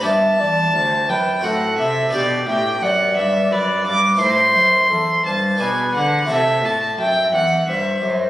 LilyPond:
<<
  \new Staff \with { instrumentName = "Violin" } { \time 3/4 \key g \major \tempo 4 = 86 a''4. g''8 fis''8 e''8 | d''8 g''8 fis''8 e''8 d''8 d'''8 | c'''4. a''8 gis''8 fis''8 | e''8 a''8 g''8 fis''8 e''8 r8 | }
  \new Staff \with { instrumentName = "Flute" } { \time 3/4 \key g \major e''8 d''8 c''8 b'8 a'4 | g'4 d''4 b'4 | c''4 a'8 c''8 b'4 | a'8 r8 e''4 c''4 | }
  \new Staff \with { instrumentName = "Harpsichord" } { \time 3/4 \key g \major <b d' g'>2 <c' fis'>4 | <b d' g'>2. | <c' e' a'>2 <b d' gis'>4 | <a e' a'>2. | }
  \new Staff \with { instrumentName = "Harpsichord" } { \clef bass \time 3/4 \key g \major g,8 e,8 d,8 fis,8 a,8 c8 | b,8 a,8 fis,8 g,8 fis,8 g,8 | a,8 fis,8 e,8 g,8 b,8 d8 | c8 a,8 fis,8 e,8 g,8 fis,8 | }
  \new Staff \with { instrumentName = "Cello" } { \clef bass \time 3/4 \key g \major g,8 e,8 d,8 fis,8 a,8 c8 | b,8 a,8 fis,8 g,8 fis,8 g,8 | a,8 fis,8 e,8 g,8 b,8 d8 | c8 a,8 fis,8 e,8 g,8 fis,8 | }
>>